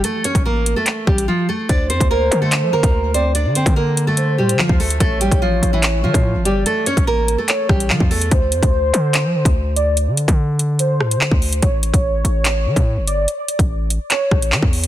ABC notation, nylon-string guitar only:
X:1
M:4/4
L:1/16
Q:1/4=145
K:Dm
V:1 name="Nylon-string guitar"
[A,A]2 [^C^c]2 [B,B]3 [A,A]3 [G,G]2 [F,F]2 [A,A]2 | [Dd]2 [Cc]2 [B,B]3 [A,A]3 [B,B]4 [Cc]2 | [Dd]2 [Cc]2 [B,B]3 [A,A]3 [G,G]2 [F,F]2 [A,A]2 | [A,A]2 [G,G]2 [F,F]3 [E,E]3 [F,F]4 [G,G]2 |
[A,A]2 [^C^c]2 [B,B]3 [A,A]3 [G,G]2 [F,F]2 [A,A]2 | z16 | z16 | z16 |
z16 |]